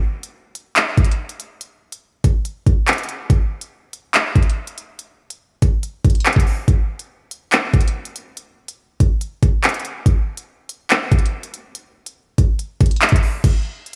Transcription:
0.23 closed hi-hat medium
0.55 closed hi-hat medium
0.76 clap loud
0.76 closed hi-hat medium
0.97 kick medium
0.97 closed hi-hat soft
1.04 closed hi-hat medium
1.12 closed hi-hat medium
1.29 closed hi-hat medium
1.40 closed hi-hat medium
1.61 closed hi-hat medium
1.92 closed hi-hat medium
2.24 kick loud
2.24 closed hi-hat medium
2.45 closed hi-hat medium
2.67 kick loud
2.67 closed hi-hat medium
2.88 clap loud
2.88 closed hi-hat medium
2.93 closed hi-hat medium
2.98 closed hi-hat medium
3.03 closed hi-hat medium
3.09 closed hi-hat medium
3.30 kick loud
3.30 closed hi-hat medium
3.61 closed hi-hat medium
3.93 closed hi-hat medium
4.14 clap loud
4.14 closed hi-hat medium
4.36 kick loud
4.36 closed hi-hat soft
4.43 closed hi-hat medium
4.50 closed hi-hat medium
4.67 closed hi-hat medium
4.78 closed hi-hat medium
4.99 closed hi-hat medium
5.30 closed hi-hat medium
5.62 kick loud
5.62 closed hi-hat medium
5.83 closed hi-hat medium
6.05 kick loud
6.05 closed hi-hat medium
6.10 closed hi-hat medium
6.15 closed hi-hat medium
6.20 closed hi-hat medium
6.26 clap loud
6.26 closed hi-hat medium
6.33 kick loud
6.33 closed hi-hat medium
6.40 closed hi-hat medium
6.47 open hi-hat medium
6.68 kick loud
6.68 closed hi-hat medium
6.99 closed hi-hat medium
7.31 closed hi-hat medium
7.52 clap loud
7.52 closed hi-hat medium
7.74 kick loud
7.74 closed hi-hat soft
7.81 closed hi-hat medium
7.88 closed hi-hat medium
8.05 closed hi-hat medium
8.16 closed hi-hat medium
8.37 closed hi-hat medium
8.68 closed hi-hat medium
9.00 kick loud
9.00 closed hi-hat medium
9.21 closed hi-hat medium
9.43 kick loud
9.43 closed hi-hat medium
9.64 clap loud
9.64 closed hi-hat medium
9.69 closed hi-hat medium
9.74 closed hi-hat medium
9.80 closed hi-hat medium
9.85 closed hi-hat medium
10.06 kick loud
10.06 closed hi-hat medium
10.37 closed hi-hat medium
10.69 closed hi-hat medium
10.90 clap loud
10.90 closed hi-hat medium
11.12 kick loud
11.12 closed hi-hat soft
11.19 closed hi-hat medium
11.26 closed hi-hat medium
11.43 closed hi-hat medium
11.54 closed hi-hat medium
11.75 closed hi-hat medium
12.06 closed hi-hat medium
12.38 kick loud
12.38 closed hi-hat medium
12.59 closed hi-hat medium
12.81 kick loud
12.81 closed hi-hat medium
12.86 closed hi-hat medium
12.91 closed hi-hat medium
12.96 closed hi-hat medium
13.02 clap loud
13.02 closed hi-hat medium
13.09 kick loud
13.09 closed hi-hat medium
13.16 closed hi-hat medium
13.23 open hi-hat medium
13.44 kick loud
13.44 closed hi-hat medium
13.44 crash loud
13.86 closed hi-hat soft

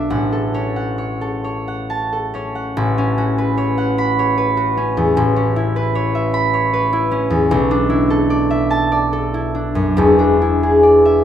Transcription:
0.00 0.15 B1 medium
0.00 0.53 C#4 medium
0.00 0.14 D4 medium
0.00 0.31 A4 medium
0.00 0.14 B4 medium
0.00 0.53 C#5 medium
0.00 0.15 D5 medium
0.00 3.79 E5 medium
0.00 1.89 A5 medium
0.00 0.14 B5 medium
0.10 2.76 A1 medium
0.10 0.75 F#5 medium
0.32 1.20 A4 medium
0.54 2.33 C#4 medium
0.54 0.97 C#5 medium
0.76 1.67 F#5 medium
0.98 1.43 C#5 medium
1.21 2.11 A4 medium
1.44 2.33 C#5 medium
1.68 2.54 F#5 medium
1.90 5.19 A5 medium
2.13 5.19 A4 soft
2.34 2.97 C#4 medium
2.34 3.56 C#5 medium
2.55 3.77 F#5 medium
2.77 5.16 A1 medium
2.98 4.76 C#4 medium
3.18 4.56 F#4 medium
3.38 4.36 B4 medium
3.58 4.18 C#5 medium
3.78 5.19 F#5 medium
3.98 6.33 B5 loud
4.19 5.94 C#5 medium
4.38 5.75 B4 medium
4.57 5.18 F#4 medium
4.77 5.35 C#4 medium
4.97 5.19 E2 medium
5.17 7.53 A1 medium
5.36 7.10 C#4 medium
5.56 6.92 E4 medium
5.76 6.72 B4 medium
5.95 6.52 C#5 medium
6.15 8.49 E5 medium
6.34 10.24 B5 loud
6.54 10.44 C#5 medium
6.73 10.63 B4 medium
6.93 7.88 E4 medium
7.11 11.01 C#4 medium
7.30 7.53 E2 medium
7.51 10.00 B1 medium
7.71 9.53 D4 medium
7.90 9.33 E4 medium
8.10 9.12 A4 medium
8.30 8.91 D5 medium
8.51 11.04 E5 medium
8.70 10.00 A5 loud
8.92 10.82 D5 medium
9.13 10.00 A4 medium
9.34 10.40 E4 medium
9.55 10.18 D4 medium
9.75 10.00 F#2 medium
9.97 11.24 E1 medium
9.97 11.24 E2 medium
10.19 11.24 D4 medium
10.42 11.24 E4 medium
10.63 11.24 G#4 medium
10.83 11.24 D5 medium
11.05 11.24 E5 medium

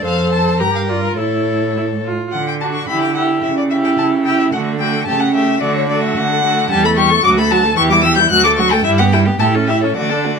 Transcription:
0.04 0.62 F2 medium
0.04 0.62 A4 soft
0.04 0.62 C5 medium
0.04 0.31 F5 medium
0.32 0.59 A5 medium
0.60 1.18 G2 soft
0.60 0.91 G4 soft
0.60 1.17 A#4 soft
0.60 0.74 A#5 medium
0.76 0.81 F5 medium
0.89 1.19 F4 soft
0.89 1.03 D5 medium
1.03 1.17 A#4 medium
1.18 2.11 A2 soft
1.18 1.71 E4 soft
1.18 2.03 A4 soft
1.18 2.03 C#5 medium
1.77 1.85 E4 soft
2.06 2.33 F4 soft
2.32 2.82 D3 medium
2.32 2.45 F#5 medium
2.48 2.53 G5 medium
2.61 2.89 D4 soft
2.61 2.89 F#4 soft
2.61 2.66 A5 medium
2.74 2.87 C#6 soft
2.88 3.38 D3 soft
2.88 3.16 E4 soft
2.88 3.16 G4 soft
2.88 3.01 B5 medium
3.02 3.14 G5 medium
3.15 3.44 E4 soft
3.15 3.44 G4 soft
3.15 3.23 F#5 medium
3.42 3.93 C#3 medium
3.42 3.57 E5 medium
3.57 3.63 D5 medium
3.70 4.25 E4 soft
3.70 4.25 G4 soft
3.70 3.76 E5 medium
3.84 3.90 G5 soft
3.98 4.47 C#3 medium
3.98 4.06 A5 medium
4.25 4.53 E4 soft
4.25 4.53 G4 soft
4.25 4.39 G5 medium
4.39 4.45 E5 medium
4.52 5.02 D3 medium
4.52 4.79 A3 soft
4.52 4.81 F#4 soft
4.52 4.60 F#5 medium
4.79 5.07 A3 soft
4.79 5.07 F#4 soft
4.79 5.05 G5 medium
5.06 5.56 C#3 medium
5.06 5.33 A3 soft
5.06 5.34 G4 soft
5.06 5.22 A5 medium
5.20 5.34 F#5 medium
5.34 5.61 A3 soft
5.34 5.60 G4 soft
5.34 5.62 E5 medium
5.61 6.11 D3 medium
5.61 5.89 A3 soft
5.61 5.89 F#4 soft
5.61 5.75 D5 medium
5.76 5.89 C#5 medium
5.89 6.43 A3 medium
5.89 6.43 F#4 soft
5.89 6.03 D5 medium
6.04 6.18 E5 medium
6.17 6.65 D3 medium
6.17 6.70 F#5 medium
6.44 6.71 A3 medium
6.44 6.71 F#4 soft
6.70 7.20 E2 medium
6.70 6.86 G3 medium
6.70 6.85 G4 medium
6.70 6.84 A5 medium
6.84 6.99 A3 medium
6.84 6.99 A4 medium
6.84 6.90 B5 medium
6.97 7.13 G3 medium
6.97 7.12 G4 medium
6.97 7.24 C#6 medium
7.11 7.23 A3 medium
7.11 7.24 A4 medium
7.24 7.72 D2 medium
7.24 7.39 F#3 medium
7.24 7.41 F#4 medium
7.24 7.30 D6 loud
7.38 7.52 A3 medium
7.38 7.54 A4 medium
7.38 7.53 B5 medium
7.51 7.65 F#3 medium
7.51 7.68 F#4 medium
7.51 7.76 A5 medium
7.64 7.76 A3 medium
7.64 7.78 A4 medium
7.76 8.26 E2 medium
7.76 7.91 E3 medium
7.76 7.94 G4 medium
7.76 7.82 C#6 loud
7.90 8.04 G3 medium
7.90 8.07 E4 medium
7.90 8.03 D6 medium
8.03 8.18 E3 medium
8.03 8.22 G4 medium
8.03 8.17 E6 medium
8.16 8.30 G3 soft
8.16 8.30 G6 medium
8.20 8.32 E4 medium
8.30 8.79 D2 medium
8.30 8.46 F#3 medium
8.30 8.47 F#4 medium
8.30 8.44 F#6 loud
8.44 8.60 A3 medium
8.44 8.61 A4 medium
8.44 8.50 D6 medium
8.57 8.74 F#3 medium
8.57 8.75 F#4 medium
8.57 8.73 C#6 medium
8.72 8.86 A3 medium
8.72 8.85 A4 medium
8.72 8.83 G5 medium
8.84 9.34 G2 medium
8.84 9.02 G3 medium
8.84 9.01 E4 medium
8.84 8.90 E5 medium
8.98 9.15 B3 medium
8.98 9.15 G4 medium
8.98 9.04 F#5 medium
9.12 9.29 G3 medium
9.12 9.27 E4 medium
9.12 9.20 G5 medium
9.26 9.41 B3 soft
9.26 9.40 G4 soft
9.39 9.90 A2 medium
9.39 9.57 E4 soft
9.39 9.56 G4 soft
9.39 9.47 A5 medium
9.55 9.71 C#4 soft
9.55 9.69 A4 soft
9.67 9.85 E4 soft
9.67 9.83 G4 soft
9.67 9.82 E5 medium
9.82 9.97 C#4 soft
9.82 9.96 A4 soft
9.82 9.96 C#5 medium
9.96 10.39 D3 medium
9.96 10.12 A3 soft
9.96 10.12 F#4 soft
9.96 10.39 D5 medium
10.10 10.27 D4 soft
10.10 10.26 A4 soft
10.24 10.39 A3 soft
10.24 10.39 F#4 soft

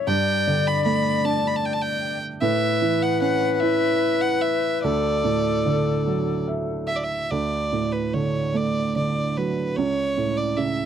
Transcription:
0.00 0.10 E3 soft
0.00 0.11 C#5 medium
0.07 2.39 G2 medium
0.07 2.18 D5 loud
0.07 0.69 G5 loud
0.47 2.00 D3 medium
0.67 0.84 B5 medium
0.85 2.39 A3 medium
0.85 1.26 B5 medium
1.25 2.39 D4 medium
1.25 1.49 A5 medium
1.47 1.58 B5 medium
1.56 1.67 A5 medium
1.65 1.75 G5 medium
1.73 1.83 A5 medium
1.82 2.22 G5 medium
2.41 4.79 A2 medium
2.41 4.86 B4 medium
2.41 3.04 E5 loud
2.82 4.39 E3 medium
3.02 3.21 F#5 medium
3.21 4.79 C#4 medium
3.21 3.54 F#5 medium
3.54 3.62 F#5 medium
3.61 4.80 E4 medium
3.61 4.23 E5 medium
4.21 4.43 F#5 medium
4.41 4.82 E5 medium
4.83 7.27 D2 medium
4.83 6.90 A4 medium
4.83 6.44 D5 medium
5.24 6.85 A2 soft
5.66 7.27 D3 medium
6.07 7.28 F#3 soft
6.48 7.27 E5 medium
6.87 6.98 E5 medium
6.96 7.05 D5 medium
7.03 7.32 E5 medium
7.31 9.72 D2 medium
7.31 7.94 D5 medium
7.72 9.32 A2 soft
7.92 8.15 B4 medium
8.14 8.94 D3 soft
8.14 8.58 C#5 medium
8.54 9.72 A3 soft
8.54 8.96 D5 medium
8.96 9.74 D3 soft
8.96 9.39 D5 medium
9.37 9.76 F#3 soft
9.37 9.78 B4 medium
9.76 10.86 C#2 medium
9.76 10.39 C#5 medium
10.18 10.86 A2 soft
10.37 10.58 D5 medium
10.57 10.86 C#3 medium
10.57 10.86 E5 medium

